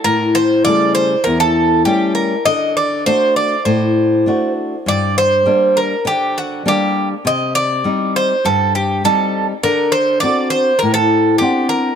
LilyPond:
<<
  \new Staff \with { instrumentName = "Bouzouki" } { \time 4/4 \key d \phrygian \tempo 4 = 100 bes'8 c''8 d''8 c''8 bes'16 a'8. g'8 bes'8 | ees''8 d''8 c''8 d''8 c''4. r8 | d''8 c''4 bes'8 g'8 fis'8 g'8. r16 | ees''8 d''4 c''8 a'8 g'8 a'8. r16 |
bes'8 c''8 d''8 c''8 bes'16 a'8. g'8 bes'8 | }
  \new Staff \with { instrumentName = "Nylon-string guitar" } { \time 4/4 \key d \phrygian a,4 <cis g a>4 e,4 <g a cis'>4 | d4 <a d' fis'>4 a,4 <a d' fis'>4 | g,4 <g bes d'>4 d4 <g bes d'>4 | c4 <g c' ees'>4 g,4 <g c' ees'>4 |
d4 <c' d' fis'>4 a,4 <c' d' fis''>4 | }
>>